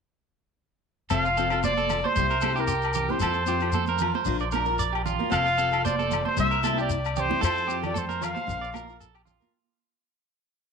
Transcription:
1.10 upright bass F1, steel-string acoustic guitar F3 C4 F4 A4, clean electric guitar A4, trumpet F5, low agogo, shekere
1.25 clean electric guitar F4, shekere
1.37 steel-string acoustic guitar F3 C4 F4 A4, clean electric guitar A4, shekere
1.50 steel-string acoustic guitar C4 F4 A4, clean electric guitar A4, low agogo, shekere
1.63 clean electric guitar C5, trumpet D5, high conga, shekere
1.77 clean electric guitar A4, high conga, shekere
1.89 steel-string acoustic guitar F4 A4, low conga, low agogo, shekere
2.04 clean electric guitar C5, trumpet C5, high conga
2.16 upright bass C2, steel-string acoustic guitar G3 C4 E4 G4, clean electric guitar C5, shekere
2.30 clean electric guitar A#4, shekere
2.41 steel-string acoustic guitar G3 C4 E4 G4, clean electric guitar A4, high conga, low agogo, shekere
2.55 steel-string acoustic guitar C4 E4 G4, clean electric guitar G4, shekere
2.60 trumpet A#4
2.67 clean electric guitar G4, shekere
2.82 low agogo, shekere
2.94 clean electric guitar G4, low conga, shekere
3.08 steel-string acoustic guitar C4 E4 G4, trumpet C5, high conga
3.20 upright bass F2, steel-string acoustic guitar C4 F4 A4, clean electric guitar A4, low agogo, shekere
3.33 shekere
3.46 steel-string acoustic guitar C4 F4 A4, clean electric guitar G4, shekere
3.60 steel-string acoustic guitar F4 A4, low agogo, shekere
3.72 clean electric guitar A4, high conga, shekere
3.86 clean electric guitar A#4, high conga, shekere
3.98 steel-string acoustic guitar C4 F4, low conga, low agogo, shekere
4.03 steel-string acoustic guitar A4
4.15 clean electric guitar C5, high conga
4.25 upright bass A#1, steel-string acoustic guitar D4 F4 A#4, shekere
4.39 clean electric guitar D5, shekere
4.51 steel-string acoustic guitar D4 F4, clean electric guitar A#4, high conga, low agogo, shekere
4.56 steel-string acoustic guitar A#4
4.65 steel-string acoustic guitar A#4, shekere
4.70 steel-string acoustic guitar F4
4.79 clean electric guitar D5, shekere
4.93 clean electric guitar G4, low agogo
5.06 clean electric guitar F4, low conga, shekere
5.19 steel-string acoustic guitar F4 A#4, high conga
5.30 upright bass F1, steel-string acoustic guitar C4 F4 A4, clean electric guitar A4, trumpet F5, low agogo, shekere
5.46 clean electric guitar F4, shekere
5.57 steel-string acoustic guitar C4 F4 A4, clean electric guitar A4, shekere
5.71 steel-string acoustic guitar F4 A4, clean electric guitar A4, low agogo, shekere
5.85 clean electric guitar C5, trumpet D5, high conga, shekere
5.99 clean electric guitar A4, high conga, shekere
6.10 steel-string acoustic guitar C4 F4 A4, low conga, low agogo, shekere
6.25 clean electric guitar C5, trumpet C5, high conga
6.37 upright bass C2, steel-string acoustic guitar G3 C4 E4, clean electric guitar C5, trumpet E5, shekere
6.51 clean electric guitar A#4, shekere
6.62 steel-string acoustic guitar G3 C4 E4, clean electric guitar A4, high conga, low agogo, shekere
6.77 steel-string acoustic guitar C4 E4, clean electric guitar G4, trumpet D5, shekere
6.90 shekere
7.05 low agogo, shekere
7.16 clean electric guitar G4, trumpet C5, low conga, shekere
7.29 steel-string acoustic guitar C4 E4, high conga
7.41 upright bass F2, steel-string acoustic guitar C4 F4 A4, clean electric guitar A4, trumpet C5, low agogo, shekere
7.57 shekere
7.68 steel-string acoustic guitar C4 F4 A4, clean electric guitar G4, shekere
7.82 steel-string acoustic guitar F4 A4, trumpet D5, low conga, low agogo, shekere
7.94 clean electric guitar A4, trumpet C5, high conga, shekere
8.09 clean electric guitar A#4, high conga, shekere
8.21 steel-string acoustic guitar F4 A4, trumpet F5, low conga, low agogo, shekere
8.35 clean electric guitar C5, high conga, shekere
8.47 upright bass A#1, steel-string acoustic guitar D4 A#4, muted steel-string acoustic guitar stroke, shekere
8.61 clean electric guitar D5, shekere
8.73 steel-string acoustic guitar D4 F4 A#4, clean electric guitar A#4, high conga, low agogo, shekere
8.88 steel-string acoustic guitar F4 A#4, shekere
9.00 clean electric guitar A4, shekere
9.15 clean electric guitar G4, low agogo
9.25 clean electric guitar F4, low conga, shekere
9.40 steel-string acoustic guitar F4 A#4, high conga, shekere

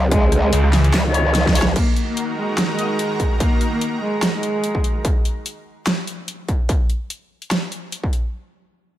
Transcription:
Already playing: wobble bass C#2
0.12 cello G#3, kick, closed hi-hat
0.32 cross-stick, closed hi-hat
0.43 cello G#3
0.53 detuned saw bass C#2, closed hi-hat
0.64 cross-stick
0.73 cello E3, snare, open hi-hat
0.84 closed hi-hat
0.94 wobble bass C#2, snare, clap, closed hi-hat
1.05 cello D#3
1.14 brass ensemble G#3 E4 C#5, closed hi-hat
1.25 brass ensemble G#3 E4 C#5
1.35 snare, closed hi-hat
1.46 kick, snare
1.55 brass ensemble G#3 E4 C#5, open hi-hat
1.62 snare
1.76 supersaw synth D#3 D#4 F#4 A#4 A#5, cello A#3, kick, closed hi-hat, crash
1.96 closed hi-hat
2.08 cello A#3
2.17 closed hi-hat
2.38 cello G#3
2.58 snare, closed hi-hat
2.69 cello G#3
2.79 brass ensemble A#3 F#4 D#5, closed hi-hat
2.99 closed hi-hat
3.20 kick, closed hi-hat
3.40 cello A#3, kick, closed hi-hat
3.61 closed hi-hat
3.72 cello A#3
3.81 closed hi-hat
4.02 cello G#3
4.23 snare, closed hi-hat
4.34 cello G#3
4.43 closed hi-hat
4.64 closed hi-hat
4.75 kick
4.84 closed hi-hat
5.05 kick, closed hi-hat
5.25 closed hi-hat
5.46 closed hi-hat
5.87 snare, closed hi-hat
6.07 closed hi-hat
6.28 closed hi-hat
6.49 kick, closed hi-hat
6.69 kick, closed hi-hat
6.90 closed hi-hat
7.10 closed hi-hat
7.42 closed hi-hat
7.51 snare, closed hi-hat
7.72 closed hi-hat
7.92 closed hi-hat
8.04 kick
8.13 closed hi-hat

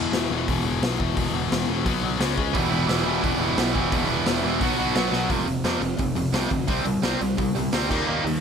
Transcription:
Already playing: picked electric bass E1, distorted electric guitar E2 B2 E3
0.12 picked electric bass E1, distorted electric guitar E2 B2, snare, open hi-hat
0.17 distorted electric guitar E3
0.30 picked electric bass E1, distorted electric guitar E2 B2 E3
0.48 picked electric bass E1, distorted electric guitar E2 B2 E3, kick, open hi-hat
0.63 picked electric bass E1, distorted electric guitar E2 B2 E3
0.82 picked electric bass B1, distorted electric guitar E2 B2 E3, snare, open hi-hat
0.99 picked electric bass E1, distorted electric guitar E2 B2 E3, kick
1.17 picked electric bass E1, distorted electric guitar E2 B2 E3, kick, open hi-hat
1.33 picked electric bass E1, distorted electric guitar E2 B2 E3
1.50 picked electric bass E1, distorted electric guitar E2 B2 E3, snare, open hi-hat
1.68 picked electric bass E1, distorted electric guitar E2 B2 E3
1.85 picked electric bass B1, distorted electric guitar B2 F#3 B3, kick, open hi-hat
2.03 distorted electric guitar B2 F#3 B3
2.19 picked electric bass C#2, distorted electric guitar C#3 G#3 C#4, snare, open hi-hat
2.38 picked electric bass C#2, distorted electric guitar C#3 G#3 C#4, kick
2.54 picked electric bass E1, distorted electric guitar E2 B2 E3 G3 B3 E4, kick, open hi-hat
2.70 picked electric bass E1, distorted electric guitar E2 B2 E3 G3 B3 E4
2.88 picked electric bass E1, distorted electric guitar E2 B2 E3 G3 B3 E4, snare, open hi-hat
3.05 picked electric bass E1, distorted electric guitar E2 B2 E3 G3 B3 E4
3.23 picked electric bass E1, distorted electric guitar E2 B2 E3 G3 B3 E4, kick, open hi-hat
3.39 picked electric bass E1, distorted electric guitar E2 B2 E3 G3 B3 E4
3.57 picked electric bass B1, distorted electric guitar E2 B2 E3 G3 B3 E4, snare, open hi-hat
3.74 picked electric bass E1, distorted electric guitar E2 B2 E3 G3 B3 E4, kick
3.91 picked electric bass E1, distorted electric guitar E2 B2 E3 G3 B3 E4, kick, open hi-hat
4.09 picked electric bass E1, distorted electric guitar E2 B2 E3 G3 B3 E4
4.26 picked electric bass E1, distorted electric guitar E2 B2 E3 G3 B3 E4, snare, open hi-hat
4.44 picked electric bass E1, distorted electric guitar E2 B2 E3 G3 B3 E4
4.61 picked electric bass B1, distorted electric guitar B2 F#3 B3 F#4, kick, open hi-hat
4.78 distorted electric guitar B2 F#3 B3 F#4
4.95 picked electric bass B1, distorted electric guitar B2 F#3 B3 F#4, snare, open hi-hat
5.12 picked electric bass B1, distorted electric guitar B2 F#3 B3 F#4, snare
5.29 picked electric bass F1, distorted electric guitar F2 C3 F3, kick, open hi-hat
5.46 picked electric bass F1, distorted electric guitar F2 C3, open hi-hat
5.64 picked electric bass F2, distorted electric guitar F2 C3 F3, snare, open hi-hat
5.81 picked electric bass F1, distorted electric guitar F2 C3, open hi-hat
5.98 picked electric bass F1, distorted electric guitar F2 C3, kick, open hi-hat
6.15 picked electric bass F1, distorted electric guitar F2 C3, open hi-hat
6.33 picked electric bass C2, distorted electric guitar F2 C3 F3, snare, open hi-hat
6.51 picked electric bass D2, distorted electric guitar F2 C3, kick, open hi-hat
6.67 picked electric bass C2, distorted electric guitar C3 G3 C4, kick, open hi-hat
6.85 picked electric bass C2, distorted electric guitar C3 G3, open hi-hat
7.03 picked electric bass C2, distorted electric guitar C3 G3 C4, snare, open hi-hat
7.21 picked electric bass C2, distorted electric guitar C3 G3, open hi-hat
7.38 picked electric bass C2, distorted electric guitar C3 G3, kick, open hi-hat
7.55 picked electric bass C2, distorted electric guitar C3 G3, open hi-hat
7.73 picked electric bass D2, distorted electric guitar C3 G3 C4, snare, open hi-hat
7.90 picked electric bass D#2, distorted electric guitar D#3 G3 A#3 D#4, kick, crash
8.07 picked electric bass D#2, distorted electric guitar D#3 G3 A#3 D#4
8.25 picked electric bass D#2, distorted electric guitar D#3 G3 A#3, open hi-hat

